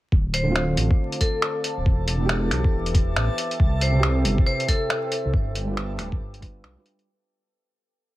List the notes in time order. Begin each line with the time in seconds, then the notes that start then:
0.11 D1 A4 C5 F5 A5 D6, kick
0.34 C5, closed hi-hat
0.43 D3 A3
0.49 C4 F4
0.56 finger snap
0.77 A1, closed hi-hat
0.91 kick
1.12 closed hi-hat
1.21 A4, kick, closed hi-hat
1.42 finger snap
1.64 closed hi-hat
1.78 D1
1.86 E1 B4 E5 G5 D6, kick
2.08 closed hi-hat
2.17 E3 B3
2.22 D4 G4
2.29 finger snap
2.51 B1, finger snap, closed hi-hat
2.64 kick
2.73 E1
2.86 closed hi-hat
2.95 kick, closed hi-hat
3.16 A1, finger snap
3.38 closed hi-hat
3.51 closed hi-hat
3.60 C2 C5 G5 E6, kick
3.81 C5, closed hi-hat
3.91 C3 C4
3.96 E4 G4
4.03 finger snap
4.25 G1, closed hi-hat
4.38 kick
4.46 C5
4.60 closed hi-hat
4.68 A4, kick, closed hi-hat
4.90 finger snap
5.12 closed hi-hat
5.25 C2
5.34 G1 B4 F5 G5 D6, kick
5.55 closed hi-hat
5.65 G3 D4
5.70 F4 B4
5.77 finger snap
5.99 D1, finger snap, closed hi-hat
6.12 kick
6.20 G1
6.34 closed hi-hat
6.40 G3 D4 F4, kick, closed hi-hat
6.44 B4
6.64 B1, finger snap
6.76 G3 D4 F4 B4
6.86 closed hi-hat
6.99 closed hi-hat